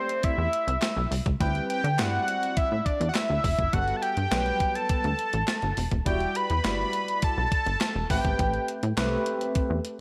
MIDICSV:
0, 0, Header, 1, 5, 480
1, 0, Start_track
1, 0, Tempo, 582524
1, 1154, Time_signature, 4, 2, 24, 8
1, 8241, End_track
2, 0, Start_track
2, 0, Title_t, "Analog synth lead"
2, 0, Program_c, 0, 81
2, 0, Note_on_c, 0, 72, 102
2, 197, Note_on_c, 0, 76, 101
2, 210, Note_off_c, 0, 72, 0
2, 916, Note_off_c, 0, 76, 0
2, 1155, Note_on_c, 0, 79, 86
2, 1378, Note_off_c, 0, 79, 0
2, 1398, Note_on_c, 0, 79, 86
2, 1583, Note_off_c, 0, 79, 0
2, 1583, Note_on_c, 0, 79, 78
2, 1643, Note_on_c, 0, 78, 97
2, 1655, Note_off_c, 0, 79, 0
2, 2116, Note_on_c, 0, 76, 95
2, 2128, Note_off_c, 0, 78, 0
2, 2351, Note_on_c, 0, 74, 81
2, 2363, Note_off_c, 0, 76, 0
2, 2535, Note_off_c, 0, 74, 0
2, 2546, Note_on_c, 0, 78, 56
2, 2596, Note_on_c, 0, 76, 96
2, 2608, Note_off_c, 0, 78, 0
2, 3075, Note_on_c, 0, 78, 108
2, 3087, Note_off_c, 0, 76, 0
2, 3265, Note_on_c, 0, 81, 74
2, 3278, Note_off_c, 0, 78, 0
2, 3311, Note_on_c, 0, 79, 116
2, 3324, Note_off_c, 0, 81, 0
2, 3916, Note_on_c, 0, 81, 102
2, 3928, Note_off_c, 0, 79, 0
2, 4755, Note_off_c, 0, 81, 0
2, 5003, Note_on_c, 0, 79, 92
2, 5240, Note_on_c, 0, 83, 105
2, 5253, Note_off_c, 0, 79, 0
2, 5958, Note_off_c, 0, 83, 0
2, 5966, Note_on_c, 0, 81, 107
2, 6647, Note_off_c, 0, 81, 0
2, 6691, Note_on_c, 0, 79, 82
2, 7130, Note_off_c, 0, 79, 0
2, 8241, End_track
3, 0, Start_track
3, 0, Title_t, "Tine electric piano"
3, 0, Program_c, 1, 4
3, 0, Note_on_c, 1, 57, 66
3, 0, Note_on_c, 1, 60, 61
3, 0, Note_on_c, 1, 67, 64
3, 0, Note_on_c, 1, 74, 77
3, 379, Note_off_c, 1, 57, 0
3, 380, Note_off_c, 1, 60, 0
3, 381, Note_off_c, 1, 67, 0
3, 382, Note_off_c, 1, 74, 0
3, 1155, Note_on_c, 1, 55, 68
3, 1157, Note_on_c, 1, 60, 67
3, 1160, Note_on_c, 1, 64, 64
3, 1161, Note_on_c, 1, 71, 74
3, 1487, Note_off_c, 1, 55, 0
3, 1488, Note_off_c, 1, 60, 0
3, 1490, Note_off_c, 1, 64, 0
3, 1490, Note_off_c, 1, 71, 0
3, 1635, Note_on_c, 1, 55, 74
3, 1637, Note_on_c, 1, 60, 69
3, 1640, Note_on_c, 1, 64, 72
3, 1641, Note_on_c, 1, 74, 78
3, 2300, Note_off_c, 1, 55, 0
3, 2301, Note_off_c, 1, 60, 0
3, 2302, Note_off_c, 1, 64, 0
3, 2303, Note_off_c, 1, 74, 0
3, 3070, Note_on_c, 1, 55, 75
3, 3072, Note_on_c, 1, 59, 65
3, 3075, Note_on_c, 1, 66, 63
3, 3078, Note_on_c, 1, 69, 75
3, 3405, Note_off_c, 1, 55, 0
3, 3406, Note_off_c, 1, 59, 0
3, 3407, Note_off_c, 1, 66, 0
3, 3409, Note_off_c, 1, 69, 0
3, 3552, Note_on_c, 1, 55, 72
3, 3553, Note_on_c, 1, 59, 67
3, 3555, Note_on_c, 1, 54, 67
3, 3557, Note_on_c, 1, 71, 79
3, 4218, Note_off_c, 1, 55, 0
3, 4218, Note_off_c, 1, 59, 0
3, 4220, Note_off_c, 1, 54, 0
3, 4221, Note_off_c, 1, 71, 0
3, 4989, Note_on_c, 1, 55, 68
3, 4992, Note_on_c, 1, 64, 68
3, 4993, Note_on_c, 1, 66, 66
3, 4995, Note_on_c, 1, 74, 78
3, 5324, Note_off_c, 1, 55, 0
3, 5326, Note_off_c, 1, 64, 0
3, 5327, Note_off_c, 1, 66, 0
3, 5327, Note_off_c, 1, 74, 0
3, 5472, Note_on_c, 1, 55, 72
3, 5474, Note_on_c, 1, 64, 68
3, 5475, Note_on_c, 1, 66, 67
3, 5477, Note_on_c, 1, 74, 83
3, 6138, Note_off_c, 1, 55, 0
3, 6139, Note_off_c, 1, 64, 0
3, 6140, Note_off_c, 1, 66, 0
3, 6141, Note_off_c, 1, 74, 0
3, 6673, Note_on_c, 1, 57, 71
3, 6674, Note_on_c, 1, 60, 68
3, 6678, Note_on_c, 1, 67, 67
3, 6679, Note_on_c, 1, 71, 90
3, 7250, Note_off_c, 1, 57, 0
3, 7250, Note_off_c, 1, 60, 0
3, 7252, Note_off_c, 1, 67, 0
3, 7253, Note_off_c, 1, 71, 0
3, 7392, Note_on_c, 1, 57, 93
3, 7394, Note_on_c, 1, 60, 85
3, 7396, Note_on_c, 1, 67, 83
3, 7399, Note_on_c, 1, 71, 95
3, 8058, Note_off_c, 1, 57, 0
3, 8059, Note_off_c, 1, 60, 0
3, 8060, Note_off_c, 1, 67, 0
3, 8062, Note_off_c, 1, 71, 0
3, 8241, End_track
4, 0, Start_track
4, 0, Title_t, "Analog synth bass"
4, 0, Program_c, 2, 38
4, 313, Note_on_c, 2, 40, 84
4, 396, Note_off_c, 2, 40, 0
4, 556, Note_on_c, 2, 36, 91
4, 638, Note_off_c, 2, 36, 0
4, 795, Note_on_c, 2, 35, 98
4, 878, Note_off_c, 2, 35, 0
4, 915, Note_on_c, 2, 36, 87
4, 998, Note_off_c, 2, 36, 0
4, 1037, Note_on_c, 2, 37, 85
4, 1119, Note_off_c, 2, 37, 0
4, 1157, Note_on_c, 2, 38, 102
4, 1321, Note_off_c, 2, 38, 0
4, 1516, Note_on_c, 2, 50, 93
4, 1639, Note_on_c, 2, 43, 97
4, 1651, Note_off_c, 2, 50, 0
4, 1802, Note_off_c, 2, 43, 0
4, 2239, Note_on_c, 2, 45, 80
4, 2320, Note_off_c, 2, 45, 0
4, 2477, Note_on_c, 2, 40, 88
4, 2558, Note_off_c, 2, 40, 0
4, 2717, Note_on_c, 2, 38, 85
4, 2799, Note_off_c, 2, 38, 0
4, 2836, Note_on_c, 2, 29, 97
4, 2918, Note_off_c, 2, 29, 0
4, 2955, Note_on_c, 2, 30, 83
4, 3038, Note_off_c, 2, 30, 0
4, 3076, Note_on_c, 2, 31, 105
4, 3240, Note_off_c, 2, 31, 0
4, 3437, Note_on_c, 2, 43, 91
4, 3518, Note_off_c, 2, 43, 0
4, 3558, Note_on_c, 2, 35, 95
4, 3722, Note_off_c, 2, 35, 0
4, 4156, Note_on_c, 2, 38, 90
4, 4238, Note_off_c, 2, 38, 0
4, 4397, Note_on_c, 2, 33, 89
4, 4479, Note_off_c, 2, 33, 0
4, 4638, Note_on_c, 2, 31, 86
4, 4719, Note_off_c, 2, 31, 0
4, 4760, Note_on_c, 2, 28, 85
4, 4840, Note_off_c, 2, 28, 0
4, 4875, Note_on_c, 2, 27, 91
4, 4957, Note_off_c, 2, 27, 0
4, 4995, Note_on_c, 2, 28, 103
4, 5160, Note_off_c, 2, 28, 0
4, 5358, Note_on_c, 2, 40, 98
4, 5440, Note_off_c, 2, 40, 0
4, 5479, Note_on_c, 2, 31, 89
4, 5643, Note_off_c, 2, 31, 0
4, 6077, Note_on_c, 2, 35, 83
4, 6159, Note_off_c, 2, 35, 0
4, 6316, Note_on_c, 2, 31, 92
4, 6398, Note_off_c, 2, 31, 0
4, 6554, Note_on_c, 2, 28, 89
4, 6637, Note_off_c, 2, 28, 0
4, 6675, Note_on_c, 2, 33, 97
4, 6757, Note_off_c, 2, 33, 0
4, 6796, Note_on_c, 2, 32, 78
4, 6878, Note_off_c, 2, 32, 0
4, 6914, Note_on_c, 2, 33, 111
4, 7079, Note_off_c, 2, 33, 0
4, 7276, Note_on_c, 2, 45, 99
4, 7358, Note_off_c, 2, 45, 0
4, 7394, Note_on_c, 2, 36, 100
4, 7559, Note_off_c, 2, 36, 0
4, 7994, Note_on_c, 2, 40, 86
4, 8077, Note_off_c, 2, 40, 0
4, 8241, End_track
5, 0, Start_track
5, 0, Title_t, "Drums"
5, 77, Note_on_c, 9, 42, 55
5, 159, Note_off_c, 9, 42, 0
5, 192, Note_on_c, 9, 42, 83
5, 196, Note_on_c, 9, 36, 98
5, 274, Note_off_c, 9, 42, 0
5, 279, Note_off_c, 9, 36, 0
5, 438, Note_on_c, 9, 42, 68
5, 520, Note_off_c, 9, 42, 0
5, 559, Note_on_c, 9, 42, 54
5, 642, Note_off_c, 9, 42, 0
5, 671, Note_on_c, 9, 39, 84
5, 679, Note_on_c, 9, 38, 98
5, 681, Note_on_c, 9, 42, 76
5, 753, Note_off_c, 9, 39, 0
5, 762, Note_off_c, 9, 38, 0
5, 763, Note_off_c, 9, 42, 0
5, 920, Note_on_c, 9, 46, 73
5, 1002, Note_off_c, 9, 46, 0
5, 1037, Note_on_c, 9, 36, 82
5, 1039, Note_on_c, 9, 42, 39
5, 1120, Note_off_c, 9, 36, 0
5, 1121, Note_off_c, 9, 42, 0
5, 1158, Note_on_c, 9, 36, 112
5, 1158, Note_on_c, 9, 42, 92
5, 1240, Note_off_c, 9, 36, 0
5, 1240, Note_off_c, 9, 42, 0
5, 1277, Note_on_c, 9, 42, 31
5, 1359, Note_off_c, 9, 42, 0
5, 1400, Note_on_c, 9, 42, 71
5, 1483, Note_off_c, 9, 42, 0
5, 1520, Note_on_c, 9, 42, 50
5, 1603, Note_off_c, 9, 42, 0
5, 1635, Note_on_c, 9, 39, 88
5, 1641, Note_on_c, 9, 38, 124
5, 1642, Note_on_c, 9, 42, 86
5, 1718, Note_off_c, 9, 39, 0
5, 1723, Note_off_c, 9, 38, 0
5, 1724, Note_off_c, 9, 42, 0
5, 1879, Note_on_c, 9, 42, 74
5, 1961, Note_off_c, 9, 42, 0
5, 2002, Note_on_c, 9, 42, 50
5, 2085, Note_off_c, 9, 42, 0
5, 2116, Note_on_c, 9, 42, 88
5, 2118, Note_on_c, 9, 36, 101
5, 2198, Note_off_c, 9, 42, 0
5, 2201, Note_off_c, 9, 36, 0
5, 2356, Note_on_c, 9, 36, 80
5, 2359, Note_on_c, 9, 42, 63
5, 2439, Note_off_c, 9, 36, 0
5, 2442, Note_off_c, 9, 42, 0
5, 2479, Note_on_c, 9, 42, 52
5, 2562, Note_off_c, 9, 42, 0
5, 2590, Note_on_c, 9, 39, 88
5, 2599, Note_on_c, 9, 38, 95
5, 2601, Note_on_c, 9, 42, 83
5, 2672, Note_off_c, 9, 39, 0
5, 2682, Note_off_c, 9, 38, 0
5, 2683, Note_off_c, 9, 42, 0
5, 2836, Note_on_c, 9, 36, 93
5, 2840, Note_on_c, 9, 46, 77
5, 2918, Note_off_c, 9, 36, 0
5, 2922, Note_off_c, 9, 46, 0
5, 2955, Note_on_c, 9, 42, 45
5, 2956, Note_on_c, 9, 36, 90
5, 3038, Note_off_c, 9, 36, 0
5, 3038, Note_off_c, 9, 42, 0
5, 3075, Note_on_c, 9, 42, 86
5, 3076, Note_on_c, 9, 36, 103
5, 3158, Note_off_c, 9, 36, 0
5, 3158, Note_off_c, 9, 42, 0
5, 3195, Note_on_c, 9, 42, 32
5, 3277, Note_off_c, 9, 42, 0
5, 3317, Note_on_c, 9, 42, 73
5, 3400, Note_off_c, 9, 42, 0
5, 3435, Note_on_c, 9, 42, 48
5, 3518, Note_off_c, 9, 42, 0
5, 3556, Note_on_c, 9, 38, 110
5, 3557, Note_on_c, 9, 39, 87
5, 3557, Note_on_c, 9, 42, 90
5, 3639, Note_off_c, 9, 38, 0
5, 3640, Note_off_c, 9, 39, 0
5, 3640, Note_off_c, 9, 42, 0
5, 3674, Note_on_c, 9, 42, 34
5, 3756, Note_off_c, 9, 42, 0
5, 3792, Note_on_c, 9, 42, 71
5, 3793, Note_on_c, 9, 36, 74
5, 3874, Note_off_c, 9, 42, 0
5, 3875, Note_off_c, 9, 36, 0
5, 3917, Note_on_c, 9, 42, 54
5, 4000, Note_off_c, 9, 42, 0
5, 4032, Note_on_c, 9, 42, 93
5, 4035, Note_on_c, 9, 36, 104
5, 4115, Note_off_c, 9, 42, 0
5, 4118, Note_off_c, 9, 36, 0
5, 4155, Note_on_c, 9, 42, 31
5, 4237, Note_off_c, 9, 42, 0
5, 4275, Note_on_c, 9, 42, 64
5, 4357, Note_off_c, 9, 42, 0
5, 4392, Note_on_c, 9, 42, 55
5, 4475, Note_off_c, 9, 42, 0
5, 4510, Note_on_c, 9, 39, 83
5, 4515, Note_on_c, 9, 38, 97
5, 4516, Note_on_c, 9, 42, 78
5, 4593, Note_off_c, 9, 39, 0
5, 4597, Note_off_c, 9, 38, 0
5, 4599, Note_off_c, 9, 42, 0
5, 4633, Note_on_c, 9, 42, 33
5, 4715, Note_off_c, 9, 42, 0
5, 4755, Note_on_c, 9, 46, 76
5, 4838, Note_off_c, 9, 46, 0
5, 4874, Note_on_c, 9, 36, 77
5, 4874, Note_on_c, 9, 42, 43
5, 4956, Note_off_c, 9, 42, 0
5, 4957, Note_off_c, 9, 36, 0
5, 4995, Note_on_c, 9, 36, 98
5, 4995, Note_on_c, 9, 42, 91
5, 5078, Note_off_c, 9, 36, 0
5, 5078, Note_off_c, 9, 42, 0
5, 5113, Note_on_c, 9, 42, 30
5, 5195, Note_off_c, 9, 42, 0
5, 5235, Note_on_c, 9, 42, 72
5, 5317, Note_off_c, 9, 42, 0
5, 5354, Note_on_c, 9, 42, 48
5, 5436, Note_off_c, 9, 42, 0
5, 5475, Note_on_c, 9, 39, 83
5, 5476, Note_on_c, 9, 38, 110
5, 5477, Note_on_c, 9, 42, 80
5, 5557, Note_off_c, 9, 39, 0
5, 5558, Note_off_c, 9, 38, 0
5, 5560, Note_off_c, 9, 42, 0
5, 5711, Note_on_c, 9, 42, 72
5, 5794, Note_off_c, 9, 42, 0
5, 5837, Note_on_c, 9, 42, 49
5, 5919, Note_off_c, 9, 42, 0
5, 5951, Note_on_c, 9, 42, 86
5, 5956, Note_on_c, 9, 36, 109
5, 6034, Note_off_c, 9, 42, 0
5, 6038, Note_off_c, 9, 36, 0
5, 6194, Note_on_c, 9, 36, 88
5, 6195, Note_on_c, 9, 42, 66
5, 6277, Note_off_c, 9, 36, 0
5, 6277, Note_off_c, 9, 42, 0
5, 6316, Note_on_c, 9, 42, 53
5, 6399, Note_off_c, 9, 42, 0
5, 6431, Note_on_c, 9, 39, 88
5, 6434, Note_on_c, 9, 38, 100
5, 6435, Note_on_c, 9, 42, 80
5, 6513, Note_off_c, 9, 39, 0
5, 6516, Note_off_c, 9, 38, 0
5, 6517, Note_off_c, 9, 42, 0
5, 6675, Note_on_c, 9, 36, 93
5, 6677, Note_on_c, 9, 46, 70
5, 6757, Note_off_c, 9, 36, 0
5, 6759, Note_off_c, 9, 46, 0
5, 6795, Note_on_c, 9, 36, 81
5, 6795, Note_on_c, 9, 42, 45
5, 6878, Note_off_c, 9, 36, 0
5, 6878, Note_off_c, 9, 42, 0
5, 6915, Note_on_c, 9, 36, 107
5, 6915, Note_on_c, 9, 42, 89
5, 6997, Note_off_c, 9, 36, 0
5, 6997, Note_off_c, 9, 42, 0
5, 7033, Note_on_c, 9, 42, 31
5, 7116, Note_off_c, 9, 42, 0
5, 7156, Note_on_c, 9, 42, 79
5, 7238, Note_off_c, 9, 42, 0
5, 7275, Note_on_c, 9, 42, 50
5, 7358, Note_off_c, 9, 42, 0
5, 7394, Note_on_c, 9, 39, 85
5, 7396, Note_on_c, 9, 38, 118
5, 7397, Note_on_c, 9, 42, 91
5, 7477, Note_off_c, 9, 39, 0
5, 7478, Note_off_c, 9, 38, 0
5, 7480, Note_off_c, 9, 42, 0
5, 7631, Note_on_c, 9, 42, 74
5, 7714, Note_off_c, 9, 42, 0
5, 7755, Note_on_c, 9, 42, 52
5, 7837, Note_off_c, 9, 42, 0
5, 7871, Note_on_c, 9, 42, 82
5, 7875, Note_on_c, 9, 36, 105
5, 7953, Note_off_c, 9, 42, 0
5, 7957, Note_off_c, 9, 36, 0
5, 8114, Note_on_c, 9, 42, 67
5, 8196, Note_off_c, 9, 42, 0
5, 8241, End_track
0, 0, End_of_file